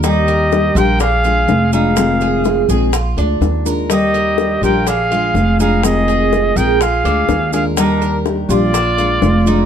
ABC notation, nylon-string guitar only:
X:1
M:4/4
L:1/8
Q:1/4=124
K:Eb
V:1 name="Nylon-string guitar"
[E,G,G]2 [E,G,DG] [G,DG] z [A,DF]2 [A,DF] | [C,E,A,CF]2 [E,A,CF] [E,A,CF] z [A,DF]2 [A,DF] | [E,G,G]2 [E,G,DG] [G,DG] z [A,DF]2 [A,DF] | [C,E,A,CF]2 [E,A,CF] [E,A,CF] z [A,DF]2 [A,DF] |
[E,G,DG]2 [E,G,DG] [G,DG] z [A,DF]2 [A,DF] |]